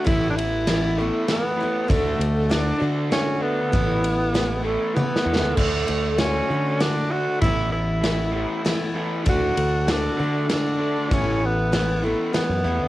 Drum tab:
CC |------------------|------------------|------------------|x-----------------|
RD |x--x--x-----x-----|x--x--x-----x-----|x--x--x-----------|---x--x-----x-----|
SD |------o-----o-----|------o-----o-----|------o-------o-o-|------o-----o-----|
T1 |------------------|------------------|------------o-----|------------------|
BD |o-----------------|o-----------------|o-----------------|o-----------------|

CC |------------------|------------------|------------------|
RD |x-----x-----x-----|x--x--x-----x-----|x-----x-----x-----|
SD |------o-----o-----|------o-----o-----|------o-----o-----|
T1 |------------------|------------------|------------------|
BD |o-----------------|o-----------------|o-----------------|